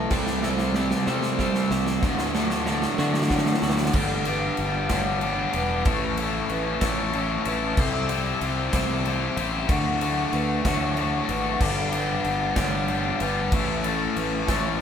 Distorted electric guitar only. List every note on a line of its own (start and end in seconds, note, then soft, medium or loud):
0.10 0.42 C3 medium
0.10 0.42 G3 loud
0.10 0.42 C4 loud
0.43 0.74 C3 medium
0.43 0.74 G3 loud
0.43 0.75 C4 loud
0.75 1.06 C3 medium
0.75 1.06 G3 medium
0.75 1.07 C4 medium
1.07 1.38 C3 medium
1.07 1.39 G3 loud
1.07 1.39 C4 loud
1.39 2.01 C3 medium
1.39 2.01 G3 medium
1.39 2.02 C4 loud
2.03 2.33 D2 loud
2.03 2.34 A2 loud
2.03 2.34 D3 loud
2.34 2.65 D2 medium
2.34 2.66 A2 loud
2.34 2.66 D3 loud
2.67 2.97 D2 medium
2.67 2.97 A2 medium
2.67 2.98 D3 medium
2.98 3.29 D2 loud
2.98 3.30 A2 loud
2.98 3.30 D3 loud
3.30 3.92 D2 medium
3.30 3.93 A2 loud
3.30 3.93 D3 loud
3.94 4.58 G2 medium
3.94 4.58 D3 medium
3.94 4.26 G3 loud
3.94 4.26 B3 medium
3.94 4.25 D4 loud
3.94 4.25 G4 loud
4.26 4.89 G3 medium
4.26 4.89 B3 medium
4.26 4.89 D4 medium
4.26 4.88 G4 medium
4.90 5.55 G2 medium
4.90 5.55 D3 medium
4.90 5.20 G3 medium
4.90 5.21 B3 loud
4.90 5.22 D4 medium
4.90 5.23 G4 loud
5.22 5.54 G3 medium
5.22 5.53 B3 medium
5.22 5.52 D4 loud
5.22 5.52 G4 loud
5.53 5.84 G3 medium
5.53 5.84 B3 medium
5.53 5.84 D4 medium
5.53 5.84 G4 medium
5.85 6.49 A2 medium
5.85 6.83 E3 loud
5.85 6.18 A3 loud
5.85 6.18 C#4 medium
5.85 6.18 E4 loud
5.85 6.16 A4 medium
6.17 6.81 A3 medium
6.17 6.81 C#4 medium
6.17 6.81 E4 medium
6.17 6.80 A4 medium
6.81 7.47 A2 medium
6.81 7.46 E3 medium
6.81 7.12 A3 loud
6.81 7.13 C#4 loud
6.81 7.14 E4 medium
6.81 7.14 A4 loud
7.13 7.46 A3 medium
7.13 7.46 C#4 loud
7.13 7.45 E4 loud
7.13 7.45 A4 medium
7.46 7.77 A3 medium
7.46 7.76 C#4 medium
7.46 7.76 E4 medium
7.46 7.76 A4 medium
7.77 8.41 C3 medium
7.77 8.42 G3 loud
7.77 8.11 C4 medium
7.77 8.10 E4 loud
7.77 8.09 G4 medium
7.77 8.08 C5 loud
8.10 8.73 C4 medium
8.10 8.73 E4 medium
8.10 8.73 G4 medium
8.10 8.72 C5 medium
8.74 9.38 C3 medium
8.74 9.38 G3 medium
8.74 9.04 C4 loud
8.74 9.05 E4 loud
8.74 9.06 G4 loud
8.74 9.06 C5 loud
9.05 9.38 C4 medium
9.05 9.37 E4 medium
9.05 9.36 G4 loud
9.05 9.36 C5 loud
9.37 9.68 C4 medium
9.37 9.68 E4 medium
9.37 9.67 G4 medium
9.37 9.67 C5 medium
9.69 10.33 D2 loud
9.69 10.33 A2 loud
9.69 10.02 D3 loud
9.69 10.02 A3 loud
9.69 10.00 F#4 loud
10.01 10.65 D3 medium
10.01 10.65 A3 medium
10.01 10.63 F#4 medium
10.65 11.30 D2 medium
10.65 10.96 A2 loud
10.65 10.96 D3 medium
10.65 10.98 A3 medium
10.65 10.98 F#4 medium
10.97 11.59 A2 medium
10.97 11.29 D3 loud
10.97 11.29 A3 medium
10.97 11.27 F#4 loud
11.28 11.59 D3 medium
11.28 11.61 A3 medium
11.28 11.58 F#4 medium
11.61 12.25 G2 medium
11.61 12.25 D3 loud
11.61 11.93 G3 loud
11.61 11.93 B3 loud
11.61 11.92 D4 loud
11.61 11.91 G4 loud
11.92 12.56 G3 medium
11.92 12.56 B3 medium
11.92 12.55 D4 medium
11.92 12.55 G4 medium
12.56 13.21 G2 medium
12.56 13.21 D3 medium
12.56 12.86 G3 loud
12.56 12.87 B3 medium
12.56 12.88 D4 loud
12.56 12.88 G4 loud
12.88 13.21 G3 medium
12.88 13.20 B3 loud
12.88 13.20 D4 loud
12.88 13.19 G4 loud
13.20 13.51 G3 medium
13.20 13.51 B3 medium
13.20 13.51 D4 medium
13.20 13.50 G4 medium
13.52 14.16 A2 medium
13.52 14.49 E3 medium
13.52 13.85 A3 loud
13.52 13.84 C#4 loud
13.52 13.84 E4 loud
13.52 13.83 A4 medium
13.84 14.48 A3 medium
13.84 14.47 C#4 medium
13.84 14.47 E4 medium
13.84 14.46 A4 medium
14.47 14.81 A2 medium
14.47 14.81 E3 loud
14.47 14.78 A3 medium
14.47 14.79 C#4 loud
14.47 14.80 E4 loud
14.47 14.80 A4 loud